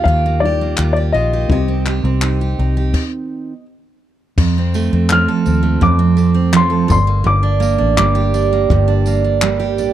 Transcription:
Already playing: G3 A#3 F4
0.04 D#2 D#3 F5, kick
0.09 G4
0.26 A#3
0.40 G3 D#4 F4 D5
0.45 G4
0.61 A#3
0.77 D#2 F4, clap
0.93 G4 D5
1.12 A#1 F4 D#5
1.33 G4
1.48 C2 C3 C4 G4 D#5, kick
1.52 G4
1.68 C4
1.86 G4, clap
2.04 C2 C4
2.22 D#4, clap
2.41 G4
2.59 C2 D#4
2.77 G4
2.94 kick, crash
4.38 F2, kick, crash
4.58 C4
4.74 A3, tambourine
4.93 F2 C4
5.09 F3 F6, clap
5.28 A4
5.46 D#2 C4, tambourine
5.63 A3
5.81 F2 D6, kick
5.99 C4
6.17 A3, tambourine
6.34 C4
6.53 F3, clap
6.57 C6
6.70 A4
6.88 G1 G2 C6, kick, tambourine
7.07 A#3
7.24 G1 G2 D6
7.43 D4
7.60 A#3, tambourine
7.78 A1 D4
7.97 G1 G3 D6, clap
8.15 G4
8.34 D4, tambourine
8.53 A#3
8.70 G1 G2, kick
8.88 D4
9.06 A#3, tambourine
9.24 D4
9.42 G3, clap
9.60 G4
9.78 A1 D4, tambourine

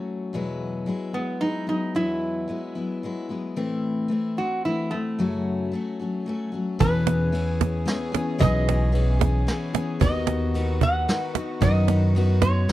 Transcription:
Already playing: F#3 A3 C#4 F#4
0.33 E2 B2 F#3 G#3 B3 E4
0.86 F#3 G#3 B3 E4
1.13 F#3 G#3 B3 E4
1.41 F#3 G#3 B3 D#4 E4
1.67 F#3 G#3 B3 D#4 E4
1.95 E2 B2 F#3 G#3 B3 E4
2.48 F#3 G#3 B3 E4
2.75 F#3 G#3 B3 E4
3.03 F#3 G#3 B3 E4
3.29 F#3 G#3 B3 E4
3.56 A2 E3 A3 C4 E4
4.08 E3 A3 C4 E4
4.37 A3 C4 E4 F#4
4.65 E3 A3 C4 E4
4.91 A3 C4 E4
5.18 F#2 C#3 F#3 A3 C#4 F#4
5.72 F#3 A3 C#4 F#4
6.00 F#3 A3 C#4 F#4
6.26 F#3 A3 C#4 F#4
6.52 F#3 A3 C#4 F#4
6.79 E2 B2 E3 B3 C#4 G#4 B4, cajon bass, kick, ride
6.94 cajon slap
7.07 cajon slap
7.32 E3 B3 C#4 G#4, ride
7.61 cajon bass, cajon slap
7.85 E3 B3 C#4 G#4, snare, ride
8.12 E3 B3 C#4 G#4, cajon slap
8.38 B1 E2 B2 E3 B3 C#4 G#4 D#5, kick, cajon bass, ride
8.55 cajon slap
8.68 cajon slap, ride
8.92 E3 B3 C#4 G#4, ride
9.19 E3 B3 C#4 G#4, cajon bass, cajon slap
9.47 E3 B3 C#4 G#4, snare, ride
9.73 E3 B3 C#4 G#4, cajon slap
10.00 D#2 D#3 B3 D#4 F#4 D#5, cajon bass, kick, ride
10.14 cajon slap
10.27 cajon slap
10.54 D#3 B3 D#4 F#4, ride
10.81 B3 D#4 F#4 F#5, cajon bass
11.08 D#3 B3 D#4 F#4, snare, ride
11.35 B3 D#4 F#4, cajon slap
11.61 F#2 D#3 B3 D#4 F#4 D#5, kick, cajon bass, ride
11.88 cajon slap, ride
12.02 cajon slap
12.15 D#3 B3 D#4 F#4, ride
12.42 B3 D#4 F#4 C#5, cajon bass, cajon slap
12.69 B1 D#3, snare, ride

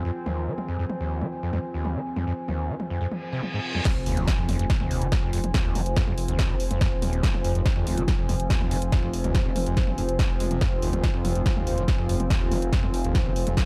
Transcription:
Already playing: F3 C4 F4 C5 G#5
0.05 F2
0.26 D#2, mid tom
0.47 F3
0.58 mid tom
0.68 F2
0.79 F2
0.90 mid tom
1.00 D#2
1.21 F3, mid tom
1.43 F2
1.53 F2, mid tom
1.74 D#2
1.85 mid tom
1.95 F3
2.16 F2, mid tom
2.27 F2
2.48 D#2, mid tom
2.69 F3
2.80 mid tom
2.90 F2
3.01 F2, reverse cymbal
3.12 mid tom
3.33 C3
3.43 mid tom
3.54 G#2
3.75 F2, mid tom
3.85 F2 F3 C4, kick, snare, closed hi-hat, mid tom, crash, impact
3.96 F1
4.06 F1 D#2, open hi-hat
4.17 F1, closed hi-hat, mid tom
4.28 F3, kick, snare, closed hi-hat
4.38 F2
4.49 F1 F2, open hi-hat, mid tom
4.59 F1 F2, closed hi-hat
4.70 kick, snare, closed hi-hat
4.80 F1 D#2, mid tom
4.91 F1, open hi-hat
5.02 F1 F3, closed hi-hat
5.12 kick, snare, closed hi-hat, mid tom
5.23 F1 F2
5.33 F1 F2, open hi-hat
5.44 F1, closed hi-hat, mid tom
5.54 D#2, kick, snare, closed hi-hat
5.65 F1
5.75 F1 F3, open hi-hat, mid tom
5.86 F1, closed hi-hat
5.96 F2, kick, snare, closed hi-hat
6.07 F1 F2, mid tom
6.18 F1, open hi-hat
6.28 F1 D#2, closed hi-hat
6.39 kick, snare, closed hi-hat, mid tom
6.50 G1 F3
6.60 F1, open hi-hat
6.71 F1 F2, closed hi-hat, mid tom
6.81 F2, kick, snare, closed hi-hat
6.92 D#1
7.02 D#1 D#2, open hi-hat, mid tom
7.13 D#1, closed hi-hat
7.23 F3, kick, snare, closed hi-hat
7.34 F1, mid tom
7.44 F1 F2, open hi-hat
7.55 F1 F2, closed hi-hat
7.66 kick, snare, closed hi-hat, mid tom
7.76 D#2 F2
7.87 F1, open hi-hat
7.97 F1 F3, closed hi-hat, mid tom
8.08 kick, snare, closed hi-hat
8.19 F1 F2
8.29 F1 F2, open hi-hat, mid tom
8.40 F1, closed hi-hat
8.50 D#2, kick, snare, closed hi-hat
8.61 F1, mid tom
8.71 F1 F3, open hi-hat
8.82 F1, closed hi-hat
8.92 F2, kick, snare, closed hi-hat, mid tom
9.03 F1 F2
9.13 F1, open hi-hat
9.24 F1 D#2, closed hi-hat, mid tom
9.35 kick, snare, closed hi-hat
9.45 F1 F3
9.56 F1, open hi-hat, mid tom
9.66 F1 F2, closed hi-hat
9.77 kick, snare, closed hi-hat
9.88 G1, mid tom
9.98 F1 F2, open hi-hat
10.09 F1, closed hi-hat
10.19 F2, kick, snare, closed hi-hat, mid tom
10.30 F1
10.40 F1 G#3, open hi-hat
10.51 F1 C3, closed hi-hat, mid tom
10.61 F2, kick, snare, closed hi-hat, mid tom
10.72 F1
10.82 F1 D#2, open hi-hat
10.93 F1, closed hi-hat, mid tom
11.04 F3, kick, snare, closed hi-hat
11.14 F2
11.25 F1 F2, open hi-hat, mid tom
11.35 F1 F2, closed hi-hat
11.46 kick, snare, closed hi-hat
11.56 F1 D#2, mid tom
11.67 F1, open hi-hat
11.78 F1 F3, closed hi-hat
11.88 kick, snare, closed hi-hat, mid tom
11.99 F1 F2
12.09 F1 F2, open hi-hat
12.20 F1, closed hi-hat, mid tom
12.30 D#2, kick, snare, closed hi-hat
12.41 F1
12.52 F1 F3, open hi-hat, mid tom
12.62 F1, closed hi-hat
12.73 F2, kick, snare, closed hi-hat
12.83 F1 F2, mid tom
12.94 F1, open hi-hat
13.04 F1 D#2, closed hi-hat
13.15 kick, snare, closed hi-hat, mid tom
13.26 G1 F3
13.36 F1, open hi-hat
13.47 F1 F2, closed hi-hat, mid tom
13.57 F2, kick, snare, closed hi-hat

